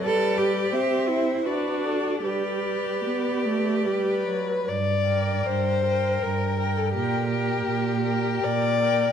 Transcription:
<<
  \new Staff \with { instrumentName = "Violin" } { \time 3/4 \key g \major \tempo 4 = 79 d''4 e''4 d''4 | d''2~ d''8. r16 | \key g \minor r8 g''4 g''4 g''8 | g''8 g''4 g''4 g''8 | }
  \new Staff \with { instrumentName = "Violin" } { \time 3/4 \key g \major b'4 c''8 c''8 b'8 a'8 | b'2 b'4 | \key g \minor d''4 c''4 bes'8. a'16 | g'2 d''4 | }
  \new Staff \with { instrumentName = "Viola" } { \time 3/4 \key g \major g4 c'4 d'4 | g4 b8 a8 g8 fis8 | \key g \minor r8 bes'4 bes'4 bes'8 | bes'8 bes'4 bes'4 bes'8 | }
  \new Staff \with { instrumentName = "Cello" } { \clef bass \time 3/4 \key g \major a'8 g'4 e'8 fis'4 | g'2~ g'8 r8 | \key g \minor g,4 g,4 g,4 | bes,4 bes,4 bes,4 | }
>>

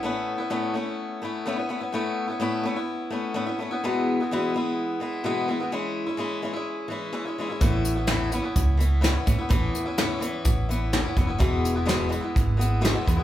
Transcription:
<<
  \new Staff \with { instrumentName = "Steel-string acoustic guitar" } { \time 4/4 \key a \lydian \tempo 4 = 127 <a, a b cis' e'>8. <b cis' e'>16 <a, a b cis' e'>8 <a b cis' e'>4 <a b cis' e'>8 <a, a b cis' e'>16 <b cis' e'>16 <a b cis' e'>16 <b cis' e'>16 | <a, a b cis' e'>8. <b cis' e'>16 <a, a b cis' e'>8 <a b cis' e'>16 <b cis' e'>8. <a b cis' e'>8 <a, a b cis' e'>16 <b cis' e'>16 <a b cis' e'>16 <b cis' e'>16 | <e, b, e gis b e'>8. <e gis b e'>16 <e, b, e gis b e'>8 <e gis b e'>4 <e gis b e'>8 <e, b, e gis b e'>8 <e gis b e'>16 <e gis b e'>16 | <e gis cis' e'>8. <gis cis' e'>16 <e gis cis' e'>8 <e gis cis' e'>16 <gis cis' e'>8. <e gis cis' e'>8 <e gis cis' e'>16 <gis cis' e'>16 <e gis cis' e'>16 <gis cis' e'>16 |
<a, e b cis' e'>8. <b cis' e'>16 <a, e b cis' e'>8 <e b cis' e'>16 <b cis' e'>8. <e b cis' e'>8 <a, e b cis' e'>16 <b cis' e'>16 <e b cis' e'>16 <b cis' e'>16 | <a, e b cis' e'>8. <b cis' e'>16 <a, e b cis' e'>8 <e b cis' e'>4 <e b cis' e'>8 <a, e b cis' e'>16 <b cis' e'>16 <e b cis' e'>16 <b cis' e'>16 | <e, b, e gis b e'>8. <e gis b e'>16 <e, b, e gis b e'>8 <e gis b e'>16 <e gis b e'>8. <e gis b e'>8 <e, b, e gis b e'>16 <e gis b e'>16 <e gis b e'>16 <e gis b e'>16 | }
  \new Staff \with { instrumentName = "Fingered electric bass" } { \clef bass \time 4/4 \key a \lydian r1 | r1 | r1 | r1 |
a,,2 cis,4. a,16 r16 | a,,8 r4. a,,4. f,,8 | e,,2 gis,,4. e,16 r16 | }
  \new DrumStaff \with { instrumentName = "Drums" } \drummode { \time 4/4 r4 r4 r4 r4 | r4 r4 r4 r4 | r4 r4 r4 r4 | r4 r4 r4 r4 |
<hh bd>8 hh8 <hh sn>8 hh8 <hh bd>8 hh8 <hh sn>8 <hh bd>8 | <hh bd>8 hh8 <hh sn>8 hh8 <hh bd>8 hh8 <hh sn>8 <hh bd>8 | <hh bd>8 hh8 <hh sn>8 hh8 <hh bd>8 hh8 <hh sn>8 <hh bd>8 | }
>>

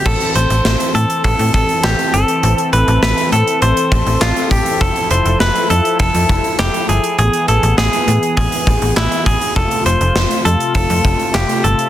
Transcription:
<<
  \new Staff \with { instrumentName = "Clean electric guitar" } { \time 4/4 \key a \minor \tempo 4 = 101 a'8 c''4 a'8 a'8 a'8 g'8 a'8~ | a'8 b'8 b'8 a'8 c''4 f'8 g'8 | a'8 c''8 b'8 a'8 a'4 g'8 gis'8 | gis'8 a'8 gis'4 gis'4 e'8 gis'8 |
a'8 c''4 a'8 a'4 g'8 a'8 | }
  \new Staff \with { instrumentName = "Analog synth pad" } { \time 4/4 \key a \minor << { a'1~ | a'1~ | a'1 | gis'1 |
f'1 | } \\ { <e c'>1~ | <e c'>1 | <f e'>1 | <e b>1 |
<c a>1 | } >> }
  \new Staff \with { instrumentName = "FM bass" } { \clef bass \time 4/4 \key a \minor a,,16 r16 a,,16 a,,16 a,,16 r16 a,16 r16 a,,16 a,16 a,,16 r16 a,,16 r16 g,,16 r16 | a,,16 r16 a,,16 a,,16 a,,16 r16 a,16 r16 a,,16 r16 a,,16 a,,16 a,,16 r16 a,,16 r16 | f,,16 r16 f,,16 f,,16 f,,16 r16 f,16 r16 f,,16 f,16 f,,16 r16 f,,16 r16 g,,16 r16 | a,,16 r16 a,,16 a,,16 a,,16 r16 a,16 r16 a,,16 r16 a,,16 a,,16 a,,16 r16 a,,16 r16 |
f,,16 r16 f,,16 f,,16 f,,16 r16 f,16 r16 f,,16 f,16 f,,16 r16 f,,16 r16 g,,16 r16 | }
  \new DrumStaff \with { instrumentName = "Drums" } \drummode { \time 4/4 <cymc bd>16 hh16 hh16 hh16 sn16 hh16 hh16 hh16 <hh bd>16 hh16 <hh bd>16 hh16 <hc sn>16 hh16 hh16 hh16 | hh16 hh16 hh16 hh16 sn16 hh16 hh16 hh16 hh16 hh16 <hh bd>16 hh16 <hc sn>16 hh16 <hh bd>16 hh16 | <hh bd>16 hh16 hh16 hh16 sn16 hh16 hh16 hh16 <hh bd>16 hh16 <hh bd>16 hh16 <hc sn>16 hh16 hh16 hh16 | hh16 hh16 hh16 hh16 sn16 hh16 hh16 hh16 <hh bd>16 hh16 <hh bd>16 hh16 <hc sn>16 hh16 <hh bd>16 hh16 |
<hh bd>16 hh16 hh16 hh16 sn16 hh16 hh16 hh16 <hh bd>16 hh16 <hh bd>16 hh16 <hc sn>16 hh16 hh16 hh16 | }
>>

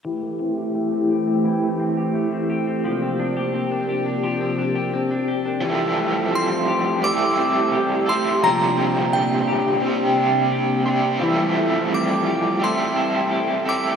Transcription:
<<
  \new Staff \with { instrumentName = "Synth bell" } { \time 4/4 \key f \major \tempo 4 = 86 r1 | r1 | r4 c'''4 d'''4. c'''8 | bes''4 g''2~ g''8 r8 |
r4 d'''4 c'''4. d'''8 | }
  \new Staff \with { instrumentName = "Clean electric guitar" } { \time 4/4 \key f \major <e g'>16 a16 c'16 g'16 a16 c'16 g'16 c'16 <e g'>16 a16 c'16 g'16 a16 c'16 g'16 c'16 | <f g'>16 c'16 d'16 g'16 c'16 d'16 g'16 d'16 <f g'>16 c'16 d'16 g'16 c'16 d'16 g'16 d'16 | e8 a8 c'8 g'8 a8 c'8 g'8 c'8 | f8 c'8 d'8 g'8 c'8 d'8 g'8 d'8 |
e8 a8 c'8 g'8 a8 c'8 g'8 c'8 | }
  \new Staff \with { instrumentName = "Overdriven electric guitar" } { \time 4/4 \key f \major r1 | r1 | <f g c' e' a'>2 <g c' e' a'>4. <c' e' a'>8 | <bes, d g c' g' c''>2 <g c' g' c''>4. <g c' g' c''>8 |
<f g c' e' a'>2 <g c' e' a'>4. <c' e' a'>8 | }
  \new Staff \with { instrumentName = "String machine" } { \time 4/4 \key f \major << { g'1 | g'1 | g'1~ | g'1 |
g'1 | } \\ { <e a e'>1 | <c bes d'>1 | <g a e'>1 | <c bes d'>1 |
<g a e'>1 | } >> }
>>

